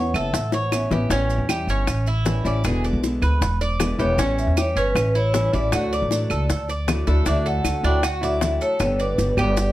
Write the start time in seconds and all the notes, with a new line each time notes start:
Already playing: E2 E3 B3 C#4 E4 C#5 F#5
0.14 F#1 A4 E5, high bongo, claves, maracas
0.33 A1, muted nylon-string guitar stroke, high bongo, maracas
0.52 C#5, high bongo, maracas
0.71 E3 B3 C#4 E4, high bongo, claves, maracas
0.90 A1 B3 C#4 E4 G4, low bongo, maracas
1.10 A1 E3 G3 C#4 E4, high bongo, maracas
1.30 maracas
1.38 E2
1.48 E3 G3 C#4 E4 G4, high bongo, claves, maracas
1.67 G1 C#4, maracas
1.87 A1, muted nylon-string guitar stroke, high bongo, claves, maracas
2.07 E4, maracas
2.25 E3 G3 C#4 E4, high bongo, low bongo, maracas
2.44 A1 G3 C#4 E4 D5, maracas
2.64 E1 B2 D3 G#3 B3 E4 G#4, high bongo, claves, maracas
2.84 D5, maracas
2.93 B1
3.03 D3 G#3 B3 E4, high bongo, maracas
3.22 D2 B4, high bongo, claves, maracas
3.41 E1, muted nylon-string guitar stroke, high bongo, maracas
3.61 D5, high bongo, maracas
3.80 D3 G#3 B3 E4, high bongo, low bongo, claves, maracas
3.98 E1 D3 G#3 B3 E4 G4 C#5, high bongo, maracas
4.18 A1 E3 G3 C#4 E4, high bongo, maracas
4.38 E5, maracas
4.47 E2
4.56 E3 G3 C#4 E4 G4 C#5, high bongo, claves, maracas
4.75 G1 C#4 B4, maracas
4.95 A1, muted nylon-string guitar stroke, high bongo, claves, maracas
5.15 E4 C#5, maracas
5.33 E3 G3 C#4 E4, high bongo, low bongo, maracas
5.53 A1 G3 C#4 E4 D5, maracas
5.72 D2 D3 F#3 A3 D4 E4 F#4, high bongo, claves, maracas
5.93 D5, maracas
6.02 A1
6.10 F#3 A3 D4 E4, high bongo, maracas
6.30 C#2 A4, high bongo, claves, maracas
6.50 D2, muted nylon-string guitar stroke, high bongo, maracas
6.68 D5, high bongo, maracas
6.87 F#3 A3 D4 E4, high bongo, low bongo, claves, maracas
7.07 D2 F#3 A3 D4 E4 A4, high bongo, maracas
7.25 D2 D3 F#3 A3 D4 E4 E5, high bongo, maracas
7.46 A4 F#5, maracas
7.64 D2 F#3 A3 D4 E4, high bongo, claves, maracas
7.83 D2 F#3 A3 D4 E4 G5, maracas
8.02 F#4 F#5, muted nylon-string guitar stroke, high bongo, claves, maracas
8.21 F#3 A3 D4 E4 D5 E5, maracas
8.41 F#3 A3 D4 E4, high bongo, low bongo, maracas
8.61 A4 C#5, maracas
8.80 G1 D3 G3 B3 G4, high bongo, claves, maracas
9.00 B4 D5, maracas
9.17 G1 D3 G3 B3 G4, high bongo, maracas
9.37 G1 G3 B3 G4 D5, high bongo, claves, maracas
9.57 muted nylon-string guitar stroke, high bongo, maracas